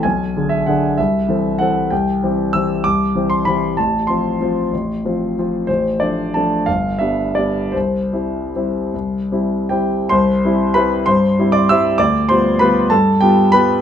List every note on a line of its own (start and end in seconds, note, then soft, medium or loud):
0.03 0.35 B1 soft
0.03 0.51 G#5 medium
0.36 0.65 D3 soft
0.36 0.65 D4 soft
0.36 0.65 G#4 soft
0.49 0.66 E5 medium
0.66 0.95 D3 soft
0.66 0.95 D4 soft
0.66 0.95 G#4 soft
0.66 0.97 F#5 medium
0.98 1.27 C2 medium
0.98 1.59 E5 medium
1.29 1.56 E3 soft
1.29 1.57 C4 soft
1.29 1.57 A4 soft
1.59 1.89 E3 soft
1.59 1.89 C4 soft
1.59 1.89 A4 soft
1.59 1.91 F#5 medium
1.91 2.21 C2 medium
1.91 2.54 G5 medium
2.23 2.52 E3 soft
2.23 2.52 C4 soft
2.23 2.52 G4 soft
2.53 2.82 E3 soft
2.53 2.83 C4 soft
2.53 2.83 G4 soft
2.53 2.85 E6 medium
2.84 3.14 C2 soft
2.84 3.30 D6 medium
3.15 3.44 E3 soft
3.15 3.44 C4 soft
3.15 3.44 G4 soft
3.30 3.46 C6 medium
3.45 3.75 E3 soft
3.45 3.75 C4 soft
3.45 3.75 G4 soft
3.45 3.77 B5 medium
3.77 4.08 A1 soft
3.77 4.08 A5 medium
4.07 4.37 F3 soft
4.07 4.38 C4 soft
4.07 4.38 F4 soft
4.07 5.36 C6 medium
4.41 4.69 F3 soft
4.41 4.70 C4 soft
4.41 4.70 F4 soft
4.73 5.03 A1 soft
5.05 5.34 F3 soft
5.05 5.35 C4 soft
5.05 5.35 F4 soft
5.39 5.66 F3 soft
5.39 5.66 C4 soft
5.39 5.66 F4 soft
5.67 6.00 A1 soft
5.67 6.01 C5 medium
6.00 6.32 F3 soft
6.00 6.31 A3 soft
6.00 6.32 D4 soft
6.00 6.34 D5 medium
6.34 6.64 F3 soft
6.34 6.65 A3 soft
6.34 6.65 D4 soft
6.34 6.67 A5 medium
6.66 6.99 G1 soft
6.66 6.99 F5 medium
6.99 7.33 G3 soft
6.99 7.32 B3 soft
6.99 7.33 D4 soft
6.99 7.35 E5 medium
7.35 7.71 G3 soft
7.35 7.71 B3 soft
7.35 7.71 D4 soft
7.35 7.74 D5 medium
7.72 8.12 C2 soft
7.72 9.68 C5 medium
8.13 8.50 G3 soft
8.13 8.50 C4 soft
8.13 8.50 E4 soft
8.56 8.90 G3 soft
8.56 8.90 C4 soft
8.56 8.90 E4 soft
8.94 9.30 C2 soft
9.32 9.66 G3 soft
9.32 9.66 C4 soft
9.32 9.66 E4 soft
9.69 10.06 G3 soft
9.69 10.06 C4 soft
9.69 10.07 E4 soft
9.69 10.07 G4 soft
9.69 10.10 G5 medium
10.09 10.42 C2 medium
10.09 10.71 C5 medium
10.09 10.74 C6 medium
10.45 10.73 G3 soft
10.45 10.73 C4 soft
10.45 10.73 E4 medium
10.74 11.03 G3 medium
10.74 11.03 C4 soft
10.74 11.04 E4 medium
10.74 11.04 B4 medium
10.74 11.06 B5 medium
11.06 11.37 G2 medium
11.06 11.50 C5 medium
11.06 11.53 C6 medium
11.39 11.67 G3 soft
11.39 11.67 C4 soft
11.39 11.67 E4 soft
11.52 11.67 D5 medium
11.52 11.68 D6 medium
11.69 11.96 G3 medium
11.69 11.97 C4 soft
11.69 11.97 E4 medium
11.69 11.97 E5 medium
11.69 11.99 E6 medium
11.98 12.28 D2 medium
11.98 12.27 D5 medium
11.98 12.28 D6 medium
12.29 12.58 G3 soft
12.29 12.58 B3 soft
12.29 12.58 F4 medium
12.29 12.58 C5 medium
12.29 12.60 C6 medium
12.59 12.88 G3 medium
12.59 12.88 B3 medium
12.59 12.88 F4 medium
12.59 12.89 B4 medium
12.59 12.90 B5 medium
12.90 13.21 G2 medium
12.90 13.19 A4 medium
12.90 13.21 A5 medium
13.21 13.50 G3 soft
13.21 13.50 B3 soft
13.21 13.50 F4 medium
13.21 13.50 G4 medium
13.21 13.52 G5 medium
13.52 13.81 G3 medium
13.52 13.81 B3 medium
13.52 13.81 F4 medium
13.52 13.81 B4 medium
13.52 13.81 B5 loud